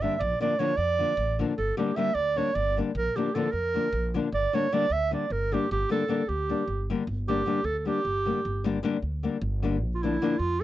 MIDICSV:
0, 0, Header, 1, 4, 480
1, 0, Start_track
1, 0, Tempo, 392413
1, 256, Time_signature, 7, 3, 24, 8
1, 13009, End_track
2, 0, Start_track
2, 0, Title_t, "Clarinet"
2, 0, Program_c, 0, 71
2, 23, Note_on_c, 0, 76, 89
2, 193, Note_off_c, 0, 76, 0
2, 193, Note_on_c, 0, 76, 82
2, 231, Note_on_c, 0, 74, 87
2, 249, Note_off_c, 0, 76, 0
2, 491, Note_off_c, 0, 74, 0
2, 502, Note_on_c, 0, 74, 85
2, 715, Note_on_c, 0, 73, 95
2, 734, Note_off_c, 0, 74, 0
2, 933, Note_on_c, 0, 74, 108
2, 952, Note_off_c, 0, 73, 0
2, 1696, Note_off_c, 0, 74, 0
2, 1926, Note_on_c, 0, 69, 84
2, 2156, Note_off_c, 0, 69, 0
2, 2163, Note_on_c, 0, 67, 81
2, 2396, Note_on_c, 0, 76, 103
2, 2414, Note_off_c, 0, 67, 0
2, 2623, Note_on_c, 0, 74, 114
2, 2641, Note_off_c, 0, 76, 0
2, 2894, Note_on_c, 0, 73, 89
2, 2912, Note_off_c, 0, 74, 0
2, 3111, Note_on_c, 0, 74, 104
2, 3130, Note_off_c, 0, 73, 0
2, 3380, Note_off_c, 0, 74, 0
2, 3629, Note_on_c, 0, 70, 90
2, 3864, Note_on_c, 0, 67, 74
2, 3882, Note_off_c, 0, 70, 0
2, 4084, Note_on_c, 0, 69, 85
2, 4102, Note_off_c, 0, 67, 0
2, 4303, Note_on_c, 0, 70, 100
2, 4321, Note_off_c, 0, 69, 0
2, 5061, Note_off_c, 0, 70, 0
2, 5307, Note_on_c, 0, 74, 98
2, 5555, Note_on_c, 0, 73, 88
2, 5574, Note_off_c, 0, 74, 0
2, 5784, Note_on_c, 0, 74, 102
2, 5802, Note_off_c, 0, 73, 0
2, 6022, Note_on_c, 0, 76, 115
2, 6041, Note_off_c, 0, 74, 0
2, 6270, Note_off_c, 0, 76, 0
2, 6278, Note_on_c, 0, 74, 77
2, 6502, Note_on_c, 0, 70, 95
2, 6521, Note_off_c, 0, 74, 0
2, 6764, Note_on_c, 0, 67, 84
2, 6782, Note_off_c, 0, 70, 0
2, 6987, Note_off_c, 0, 67, 0
2, 6993, Note_on_c, 0, 67, 89
2, 7216, Note_off_c, 0, 67, 0
2, 7232, Note_on_c, 0, 69, 79
2, 7681, Note_on_c, 0, 67, 88
2, 7699, Note_off_c, 0, 69, 0
2, 8430, Note_off_c, 0, 67, 0
2, 8904, Note_on_c, 0, 67, 89
2, 9351, Note_on_c, 0, 69, 102
2, 9370, Note_off_c, 0, 67, 0
2, 9519, Note_off_c, 0, 69, 0
2, 9519, Note_on_c, 0, 69, 55
2, 9622, Note_on_c, 0, 67, 93
2, 9640, Note_off_c, 0, 69, 0
2, 10814, Note_off_c, 0, 67, 0
2, 12165, Note_on_c, 0, 65, 72
2, 12264, Note_on_c, 0, 64, 81
2, 12283, Note_off_c, 0, 65, 0
2, 12702, Note_on_c, 0, 65, 97
2, 12721, Note_off_c, 0, 64, 0
2, 12967, Note_on_c, 0, 69, 94
2, 12985, Note_off_c, 0, 65, 0
2, 13009, Note_off_c, 0, 69, 0
2, 13009, End_track
3, 0, Start_track
3, 0, Title_t, "Nylon-string guitar"
3, 0, Program_c, 1, 24
3, 23, Note_on_c, 1, 50, 63
3, 29, Note_on_c, 1, 55, 52
3, 35, Note_on_c, 1, 58, 51
3, 44, Note_on_c, 1, 62, 56
3, 178, Note_off_c, 1, 50, 0
3, 182, Note_off_c, 1, 55, 0
3, 185, Note_off_c, 1, 58, 0
3, 187, Note_off_c, 1, 62, 0
3, 494, Note_on_c, 1, 50, 67
3, 499, Note_on_c, 1, 53, 64
3, 508, Note_on_c, 1, 58, 62
3, 517, Note_on_c, 1, 62, 78
3, 650, Note_off_c, 1, 50, 0
3, 653, Note_off_c, 1, 53, 0
3, 655, Note_off_c, 1, 58, 0
3, 661, Note_off_c, 1, 62, 0
3, 723, Note_on_c, 1, 50, 76
3, 732, Note_on_c, 1, 53, 68
3, 740, Note_on_c, 1, 58, 75
3, 748, Note_on_c, 1, 62, 76
3, 877, Note_off_c, 1, 50, 0
3, 882, Note_off_c, 1, 53, 0
3, 886, Note_off_c, 1, 58, 0
3, 890, Note_off_c, 1, 62, 0
3, 1209, Note_on_c, 1, 50, 51
3, 1221, Note_on_c, 1, 53, 47
3, 1227, Note_on_c, 1, 58, 58
3, 1234, Note_on_c, 1, 62, 49
3, 1367, Note_off_c, 1, 50, 0
3, 1373, Note_off_c, 1, 58, 0
3, 1374, Note_off_c, 1, 53, 0
3, 1379, Note_off_c, 1, 62, 0
3, 1701, Note_on_c, 1, 50, 67
3, 1710, Note_on_c, 1, 53, 58
3, 1716, Note_on_c, 1, 58, 68
3, 1726, Note_on_c, 1, 62, 69
3, 1858, Note_off_c, 1, 50, 0
3, 1862, Note_off_c, 1, 53, 0
3, 1866, Note_off_c, 1, 58, 0
3, 1871, Note_off_c, 1, 62, 0
3, 2166, Note_on_c, 1, 50, 76
3, 2173, Note_on_c, 1, 55, 68
3, 2179, Note_on_c, 1, 58, 70
3, 2189, Note_on_c, 1, 62, 70
3, 2326, Note_off_c, 1, 50, 0
3, 2330, Note_off_c, 1, 55, 0
3, 2333, Note_off_c, 1, 58, 0
3, 2338, Note_off_c, 1, 62, 0
3, 2401, Note_on_c, 1, 50, 75
3, 2414, Note_on_c, 1, 55, 76
3, 2419, Note_on_c, 1, 58, 71
3, 2427, Note_on_c, 1, 62, 81
3, 2557, Note_off_c, 1, 50, 0
3, 2563, Note_off_c, 1, 55, 0
3, 2567, Note_off_c, 1, 58, 0
3, 2569, Note_off_c, 1, 62, 0
3, 2885, Note_on_c, 1, 50, 47
3, 2893, Note_on_c, 1, 55, 46
3, 2898, Note_on_c, 1, 58, 48
3, 2907, Note_on_c, 1, 62, 66
3, 3045, Note_off_c, 1, 50, 0
3, 3049, Note_off_c, 1, 55, 0
3, 3052, Note_off_c, 1, 58, 0
3, 3056, Note_off_c, 1, 62, 0
3, 3388, Note_on_c, 1, 50, 55
3, 3395, Note_on_c, 1, 55, 58
3, 3401, Note_on_c, 1, 58, 57
3, 3409, Note_on_c, 1, 62, 68
3, 3542, Note_off_c, 1, 50, 0
3, 3546, Note_off_c, 1, 55, 0
3, 3548, Note_off_c, 1, 58, 0
3, 3553, Note_off_c, 1, 62, 0
3, 3862, Note_on_c, 1, 50, 60
3, 3872, Note_on_c, 1, 53, 62
3, 3882, Note_on_c, 1, 58, 75
3, 3886, Note_on_c, 1, 62, 72
3, 4015, Note_off_c, 1, 50, 0
3, 4021, Note_off_c, 1, 53, 0
3, 4023, Note_off_c, 1, 58, 0
3, 4027, Note_off_c, 1, 62, 0
3, 4097, Note_on_c, 1, 50, 79
3, 4106, Note_on_c, 1, 53, 72
3, 4110, Note_on_c, 1, 58, 72
3, 4119, Note_on_c, 1, 62, 76
3, 4246, Note_off_c, 1, 50, 0
3, 4248, Note_off_c, 1, 53, 0
3, 4253, Note_off_c, 1, 58, 0
3, 4255, Note_off_c, 1, 62, 0
3, 4575, Note_on_c, 1, 50, 49
3, 4581, Note_on_c, 1, 53, 50
3, 4593, Note_on_c, 1, 58, 56
3, 4599, Note_on_c, 1, 62, 56
3, 4730, Note_off_c, 1, 50, 0
3, 4733, Note_off_c, 1, 53, 0
3, 4739, Note_off_c, 1, 58, 0
3, 4743, Note_off_c, 1, 62, 0
3, 5067, Note_on_c, 1, 50, 81
3, 5075, Note_on_c, 1, 53, 64
3, 5085, Note_on_c, 1, 58, 63
3, 5092, Note_on_c, 1, 62, 68
3, 5222, Note_off_c, 1, 50, 0
3, 5226, Note_off_c, 1, 53, 0
3, 5231, Note_off_c, 1, 58, 0
3, 5234, Note_off_c, 1, 62, 0
3, 5544, Note_on_c, 1, 50, 76
3, 5551, Note_on_c, 1, 55, 61
3, 5560, Note_on_c, 1, 58, 63
3, 5565, Note_on_c, 1, 62, 84
3, 5696, Note_off_c, 1, 50, 0
3, 5700, Note_off_c, 1, 55, 0
3, 5704, Note_off_c, 1, 58, 0
3, 5706, Note_off_c, 1, 62, 0
3, 5779, Note_on_c, 1, 50, 82
3, 5784, Note_on_c, 1, 55, 65
3, 5792, Note_on_c, 1, 58, 62
3, 5799, Note_on_c, 1, 62, 78
3, 5926, Note_off_c, 1, 50, 0
3, 5929, Note_off_c, 1, 55, 0
3, 5933, Note_off_c, 1, 58, 0
3, 5935, Note_off_c, 1, 62, 0
3, 6252, Note_on_c, 1, 50, 66
3, 6260, Note_on_c, 1, 55, 51
3, 6265, Note_on_c, 1, 58, 45
3, 6273, Note_on_c, 1, 62, 57
3, 6410, Note_off_c, 1, 50, 0
3, 6411, Note_off_c, 1, 55, 0
3, 6417, Note_off_c, 1, 58, 0
3, 6418, Note_off_c, 1, 62, 0
3, 6749, Note_on_c, 1, 50, 61
3, 6756, Note_on_c, 1, 55, 55
3, 6761, Note_on_c, 1, 58, 60
3, 6774, Note_on_c, 1, 62, 68
3, 6904, Note_off_c, 1, 50, 0
3, 6905, Note_off_c, 1, 55, 0
3, 6909, Note_off_c, 1, 58, 0
3, 6915, Note_off_c, 1, 62, 0
3, 7215, Note_on_c, 1, 50, 77
3, 7220, Note_on_c, 1, 55, 60
3, 7229, Note_on_c, 1, 58, 64
3, 7234, Note_on_c, 1, 62, 89
3, 7371, Note_off_c, 1, 50, 0
3, 7374, Note_off_c, 1, 55, 0
3, 7379, Note_off_c, 1, 58, 0
3, 7381, Note_off_c, 1, 62, 0
3, 7441, Note_on_c, 1, 50, 67
3, 7451, Note_on_c, 1, 55, 68
3, 7457, Note_on_c, 1, 58, 74
3, 7464, Note_on_c, 1, 62, 76
3, 7598, Note_off_c, 1, 50, 0
3, 7603, Note_off_c, 1, 55, 0
3, 7605, Note_off_c, 1, 58, 0
3, 7609, Note_off_c, 1, 62, 0
3, 7940, Note_on_c, 1, 50, 51
3, 7945, Note_on_c, 1, 55, 55
3, 7952, Note_on_c, 1, 58, 49
3, 7962, Note_on_c, 1, 62, 57
3, 8093, Note_off_c, 1, 50, 0
3, 8096, Note_off_c, 1, 55, 0
3, 8098, Note_off_c, 1, 58, 0
3, 8104, Note_off_c, 1, 62, 0
3, 8438, Note_on_c, 1, 50, 68
3, 8442, Note_on_c, 1, 55, 62
3, 8453, Note_on_c, 1, 58, 70
3, 8457, Note_on_c, 1, 62, 68
3, 8588, Note_off_c, 1, 50, 0
3, 8588, Note_off_c, 1, 55, 0
3, 8595, Note_off_c, 1, 62, 0
3, 8596, Note_off_c, 1, 58, 0
3, 8908, Note_on_c, 1, 50, 72
3, 8913, Note_on_c, 1, 55, 60
3, 8919, Note_on_c, 1, 58, 64
3, 8930, Note_on_c, 1, 62, 71
3, 9059, Note_off_c, 1, 50, 0
3, 9060, Note_off_c, 1, 55, 0
3, 9064, Note_off_c, 1, 58, 0
3, 9069, Note_off_c, 1, 62, 0
3, 9122, Note_on_c, 1, 50, 75
3, 9135, Note_on_c, 1, 55, 68
3, 9141, Note_on_c, 1, 58, 66
3, 9147, Note_on_c, 1, 62, 78
3, 9278, Note_off_c, 1, 50, 0
3, 9284, Note_off_c, 1, 55, 0
3, 9288, Note_off_c, 1, 58, 0
3, 9291, Note_off_c, 1, 62, 0
3, 9604, Note_on_c, 1, 50, 47
3, 9609, Note_on_c, 1, 55, 50
3, 9623, Note_on_c, 1, 58, 40
3, 9628, Note_on_c, 1, 62, 59
3, 9765, Note_off_c, 1, 50, 0
3, 9768, Note_off_c, 1, 55, 0
3, 9775, Note_off_c, 1, 58, 0
3, 9777, Note_off_c, 1, 62, 0
3, 10096, Note_on_c, 1, 50, 51
3, 10105, Note_on_c, 1, 55, 54
3, 10115, Note_on_c, 1, 58, 55
3, 10120, Note_on_c, 1, 62, 61
3, 10257, Note_off_c, 1, 50, 0
3, 10261, Note_off_c, 1, 55, 0
3, 10266, Note_off_c, 1, 58, 0
3, 10268, Note_off_c, 1, 62, 0
3, 10572, Note_on_c, 1, 50, 85
3, 10579, Note_on_c, 1, 55, 76
3, 10587, Note_on_c, 1, 58, 78
3, 10594, Note_on_c, 1, 62, 93
3, 10730, Note_off_c, 1, 50, 0
3, 10733, Note_off_c, 1, 55, 0
3, 10738, Note_off_c, 1, 58, 0
3, 10741, Note_off_c, 1, 62, 0
3, 10799, Note_on_c, 1, 50, 101
3, 10805, Note_on_c, 1, 55, 80
3, 10811, Note_on_c, 1, 58, 89
3, 10821, Note_on_c, 1, 62, 100
3, 10956, Note_off_c, 1, 50, 0
3, 10960, Note_off_c, 1, 55, 0
3, 10962, Note_off_c, 1, 58, 0
3, 10968, Note_off_c, 1, 62, 0
3, 11292, Note_on_c, 1, 50, 62
3, 11298, Note_on_c, 1, 55, 56
3, 11306, Note_on_c, 1, 58, 62
3, 11312, Note_on_c, 1, 62, 68
3, 11449, Note_off_c, 1, 50, 0
3, 11452, Note_off_c, 1, 55, 0
3, 11456, Note_off_c, 1, 58, 0
3, 11459, Note_off_c, 1, 62, 0
3, 11774, Note_on_c, 1, 50, 70
3, 11784, Note_on_c, 1, 55, 66
3, 11790, Note_on_c, 1, 58, 62
3, 11799, Note_on_c, 1, 62, 75
3, 11935, Note_off_c, 1, 50, 0
3, 11940, Note_off_c, 1, 55, 0
3, 11942, Note_off_c, 1, 58, 0
3, 11948, Note_off_c, 1, 62, 0
3, 12270, Note_on_c, 1, 50, 64
3, 12275, Note_on_c, 1, 53, 61
3, 12279, Note_on_c, 1, 58, 69
3, 12290, Note_on_c, 1, 62, 75
3, 12418, Note_off_c, 1, 50, 0
3, 12421, Note_off_c, 1, 53, 0
3, 12422, Note_off_c, 1, 58, 0
3, 12428, Note_off_c, 1, 62, 0
3, 12497, Note_on_c, 1, 50, 80
3, 12502, Note_on_c, 1, 53, 80
3, 12509, Note_on_c, 1, 58, 76
3, 12518, Note_on_c, 1, 62, 80
3, 12645, Note_off_c, 1, 50, 0
3, 12646, Note_off_c, 1, 53, 0
3, 12651, Note_off_c, 1, 58, 0
3, 12655, Note_off_c, 1, 62, 0
3, 13009, End_track
4, 0, Start_track
4, 0, Title_t, "Upright bass"
4, 0, Program_c, 2, 32
4, 251, Note_on_c, 2, 34, 116
4, 401, Note_off_c, 2, 34, 0
4, 950, Note_on_c, 2, 41, 85
4, 1246, Note_off_c, 2, 41, 0
4, 1433, Note_on_c, 2, 33, 106
4, 1732, Note_off_c, 2, 33, 0
4, 1932, Note_on_c, 2, 31, 89
4, 2082, Note_off_c, 2, 31, 0
4, 2628, Note_on_c, 2, 38, 96
4, 2925, Note_off_c, 2, 38, 0
4, 3122, Note_on_c, 2, 31, 101
4, 3418, Note_off_c, 2, 31, 0
4, 3608, Note_on_c, 2, 34, 109
4, 3759, Note_off_c, 2, 34, 0
4, 4319, Note_on_c, 2, 41, 80
4, 4613, Note_off_c, 2, 41, 0
4, 4802, Note_on_c, 2, 34, 107
4, 5098, Note_off_c, 2, 34, 0
4, 5290, Note_on_c, 2, 31, 98
4, 5441, Note_off_c, 2, 31, 0
4, 5993, Note_on_c, 2, 38, 95
4, 6289, Note_off_c, 2, 38, 0
4, 6487, Note_on_c, 2, 31, 95
4, 6782, Note_off_c, 2, 31, 0
4, 6987, Note_on_c, 2, 31, 112
4, 7133, Note_off_c, 2, 31, 0
4, 7692, Note_on_c, 2, 38, 87
4, 7982, Note_off_c, 2, 38, 0
4, 8165, Note_on_c, 2, 31, 86
4, 8461, Note_off_c, 2, 31, 0
4, 8651, Note_on_c, 2, 31, 104
4, 9072, Note_off_c, 2, 31, 0
4, 9347, Note_on_c, 2, 38, 93
4, 9645, Note_off_c, 2, 38, 0
4, 9846, Note_on_c, 2, 31, 93
4, 10141, Note_off_c, 2, 31, 0
4, 10336, Note_on_c, 2, 31, 97
4, 10756, Note_off_c, 2, 31, 0
4, 11039, Note_on_c, 2, 38, 84
4, 11333, Note_off_c, 2, 38, 0
4, 11517, Note_on_c, 2, 31, 110
4, 12021, Note_off_c, 2, 31, 0
4, 12021, Note_on_c, 2, 34, 124
4, 12439, Note_off_c, 2, 34, 0
4, 12715, Note_on_c, 2, 41, 91
4, 13009, Note_off_c, 2, 41, 0
4, 13009, End_track
0, 0, End_of_file